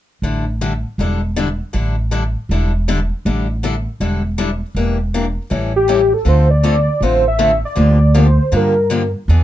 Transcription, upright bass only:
0.22 0.83 A1 medium
0.98 1.59 E1 medium
1.74 2.34 A1 medium
2.49 3.09 E1 medium
3.25 3.85 A1 medium
4.00 4.61 E1 medium
4.75 5.35 E1 medium
5.51 6.11 A1 medium
6.25 6.86 D2 medium
7.01 7.61 A1 medium
7.77 8.37 D2 medium
8.52 9.13 G2 medium
9.28 9.44 E2 medium

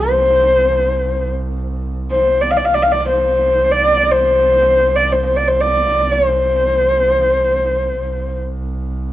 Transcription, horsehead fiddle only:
0.00 1.30 C5 medium
2.12 2.43 C5 medium
2.41 2.52 D5 medium
2.51 2.59 F5 medium
2.57 2.67 D5 medium
2.65 2.76 F5 medium
2.74 2.84 D5 medium
2.83 2.93 F5 medium
2.92 3.07 D5 medium
3.08 3.73 C5 medium
3.71 4.12 D5 medium
4.11 4.97 C5 medium
4.96 5.14 D5 medium
5.12 5.23 C5 medium
5.26 5.38 C5 medium
5.36 5.49 D5 medium
5.48 5.62 C5 medium
5.61 6.13 D5 medium
6.12 8.40 C5 medium

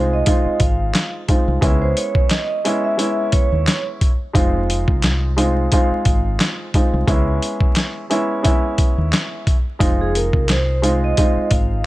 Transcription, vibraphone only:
0.13 0.58 D#5 medium
0.60 1.10 F5 medium
1.82 1.95 C5 medium
1.97 2.27 C#5 medium
2.30 2.80 D#5 medium
2.84 3.30 E5 medium
3.32 3.82 C#5 medium
10.01 10.14 G#4 medium
10.16 10.46 A#4 medium
10.50 10.99 C5 medium
11.04 11.49 D#5 medium
11.50 11.86 F5 medium

